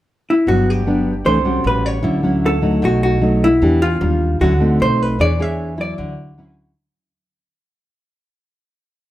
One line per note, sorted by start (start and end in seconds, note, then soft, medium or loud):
0.30 0.49 E4 medium
0.47 1.22 G1 medium
0.47 1.24 G2 soft
0.47 0.83 F#3 medium
0.47 0.83 B3 medium
0.47 0.83 D4 medium
0.47 0.70 F#4 medium
0.70 1.29 G4 medium
0.86 1.13 F#3 soft
0.86 1.13 B3 soft
0.86 1.13 D4 medium
1.25 1.62 C2 medium
1.25 1.63 C3 medium
1.25 1.37 E3 medium
1.25 1.37 A3 medium
1.25 1.37 D4 medium
1.25 1.66 C5 medium
1.45 2.01 G3 medium
1.45 2.01 C#4 medium
1.45 2.01 F#4 medium
1.64 2.01 A1 loud
1.64 1.86 B4 medium
1.86 2.46 C#5 medium
2.03 2.79 D2 medium
2.03 2.80 D3 medium
2.03 2.20 F#3 soft
2.03 2.20 C#4 medium
2.03 2.20 E4 medium
2.23 2.60 F#3 medium
2.23 2.60 C#4 medium
2.23 2.60 E4 medium
2.46 2.85 A4 medium
2.62 3.19 F#3 medium
2.62 3.19 A3 medium
2.62 3.19 D#4 medium
2.82 3.58 B1 medium
2.82 3.59 B2 medium
2.82 3.02 F#4 medium
3.03 3.44 F#4 medium
3.22 3.47 F#3 medium
3.22 3.47 A3 soft
3.22 3.48 D#4 medium
3.44 3.82 E4 medium
3.61 3.98 E2 medium
3.61 3.99 E3 medium
3.61 3.87 B3 soft
3.61 3.87 D4 medium
3.61 3.88 G4 medium
3.82 4.43 F4 medium
4.01 4.38 D#2 loud
4.01 4.39 G3 soft
4.01 4.39 D4 soft
4.01 4.39 F4 medium
4.41 4.77 D2 medium
4.41 4.78 D3 medium
4.41 4.52 F#3 medium
4.41 4.53 C#4 medium
4.41 4.52 E4 medium
4.41 4.81 F#4 medium
4.60 5.16 A3 medium
4.60 5.16 C4 medium
4.60 5.16 D#4 medium
4.80 5.16 B1 medium
4.80 5.02 C5 medium
5.02 5.21 B4 medium
5.19 5.94 E2 medium
5.19 5.96 E3 soft
5.19 5.31 D4 soft
5.19 5.31 G#4 medium
5.19 5.31 C#5 medium
5.19 5.42 D5 loud
5.39 5.75 D4 medium
5.39 5.76 G#4 medium
5.39 5.76 C#5 medium
5.39 5.81 E5 loud
5.77 6.34 F#3 medium
5.77 6.34 E4 medium
5.77 6.54 D5 medium
5.98 6.73 D2 medium
5.98 6.74 D3 medium
6.38 6.74 F#3 medium
6.38 6.74 C#4 medium
6.38 6.74 E4 medium